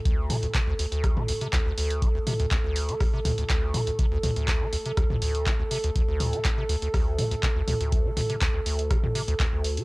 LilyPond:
<<
  \new Staff \with { instrumentName = "Analog synth pad" } { \time 4/4 \key c \dorian \tempo 4 = 122 a'1~ | a'1~ | a'1~ | a'1~ |
a'1 | }
  \new Staff \with { instrumentName = "Acid bass" } { \clef bass \time 4/4 \key c \dorian d,8 d16 d,16 c16 d,16 d,16 d,8 d16 d,16 c16 d,16 d,16 d,8 | d16 d,16 c16 d,16 d,16 d,8 d16 d,16 c16 d,16 d,16 d,8 d16 d,16 | c16 d,16 d,16 d,8 d16 d,16 c16 d,16 d,16 d,8 d16 d,16 c16 d,16 | d,16 d,8 d16 d,16 c16 d,16 d,16 d,8 d16 d,16 c16 d,16 d,16 d,16~ |
d,16 d16 d,16 c16 d,16 d,16 d,8 d16 d,16 c16 d,16 d,16 d,8 d16 | }
  \new DrumStaff \with { instrumentName = "Drums" } \drummode { \time 4/4 <hh bd>8 <hho toml>16 hh16 <hc hh bd>8 hho16 hh16 <hh bd ss>16 toml16 hho16 hh16 <hc hh bd>8 hho16 hh16 | <hh bd>8 <hho toml>16 hh16 <hc hh bd>8 hho16 hh16 <hho bd ss>8 <hho toml>16 hh16 <hc hh bd>8 <hho toml>16 hh16 | <hh bd>8 <hho toml>16 hh16 <hc hh bd>8 hho16 hh16 <hh bd ss>16 toml16 hho16 hh16 <hc hh bd>8 hho16 hh16 | <hh bd>8 <hho toml>16 hh16 <hc hh bd>8 hho16 hh16 <hho bd ss>8 <hho toml>16 hh16 <hc hh bd>8 <hho toml>16 hh16 |
<hh bd>8 <hho toml>16 hh16 <hc hh bd>8 hho16 hh16 <hh bd ss>16 toml16 hho16 hh16 <hc hh bd>8 hho16 hh16 | }
>>